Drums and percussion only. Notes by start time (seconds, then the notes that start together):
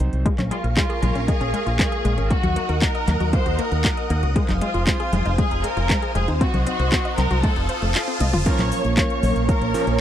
0.00 closed hi-hat
0.13 closed hi-hat
0.26 kick, closed hi-hat
0.39 clap, closed hi-hat, high conga
0.51 closed hi-hat
0.64 closed hi-hat
0.77 kick, clap, closed hi-hat
0.90 closed hi-hat
1.03 closed hi-hat, high conga
1.15 closed hi-hat
1.28 kick, closed hi-hat
1.41 closed hi-hat
1.54 closed hi-hat
1.67 closed hi-hat
1.79 kick, clap, closed hi-hat
1.92 closed hi-hat
2.05 closed hi-hat
2.18 closed hi-hat
2.30 kick, closed hi-hat
2.43 closed hi-hat, high conga
2.56 closed hi-hat
2.69 closed hi-hat
2.82 kick, clap, closed hi-hat
2.95 closed hi-hat
3.08 clap, closed hi-hat, high conga
3.20 closed hi-hat, high conga
3.33 kick, closed hi-hat
3.46 closed hi-hat
3.59 closed hi-hat
3.72 closed hi-hat
3.84 kick, clap, closed hi-hat
3.97 closed hi-hat
4.10 closed hi-hat
4.23 closed hi-hat
4.36 kick, closed hi-hat
4.49 clap, closed hi-hat, high conga
4.61 closed hi-hat
4.74 closed hi-hat
4.87 kick, clap, closed hi-hat
5.00 closed hi-hat
5.13 closed hi-hat, high conga
5.25 closed hi-hat
5.38 kick, closed hi-hat
5.51 closed hi-hat
5.64 closed hi-hat
5.77 closed hi-hat
5.90 kick, clap, closed hi-hat
6.02 closed hi-hat
6.15 closed hi-hat
6.28 closed hi-hat
6.41 kick, closed hi-hat
6.54 closed hi-hat, high conga
6.67 closed hi-hat
6.79 closed hi-hat
6.92 kick, clap, closed hi-hat
7.05 closed hi-hat
7.18 clap, closed hi-hat, high conga
7.31 closed hi-hat, high conga
7.43 kick, closed hi-hat
7.56 closed hi-hat
7.69 closed hi-hat
7.82 closed hi-hat
7.95 clap, closed hi-hat
8.07 closed hi-hat
8.20 closed hi-hat, high tom
8.33 closed hi-hat, mid tom
8.46 kick, closed hi-hat, crash, cabasa
8.59 clap, closed hi-hat, high conga
8.72 open hi-hat, cabasa
8.85 cabasa
8.97 kick, clap, closed hi-hat, cabasa
9.10 closed hi-hat, cabasa
9.23 open hi-hat, high conga, cabasa
9.36 closed hi-hat, cabasa
9.49 kick, closed hi-hat, cabasa
9.62 closed hi-hat
9.74 open hi-hat, cabasa
9.87 closed hi-hat, cabasa